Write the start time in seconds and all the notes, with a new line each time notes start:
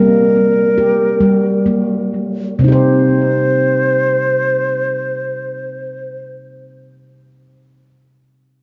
Already playing: G3 A#3 A#4
0.78 G4
1.21 G3
1.66 A#3
2.59 C3 C4 C5
2.64 D#4
2.68 G4 C5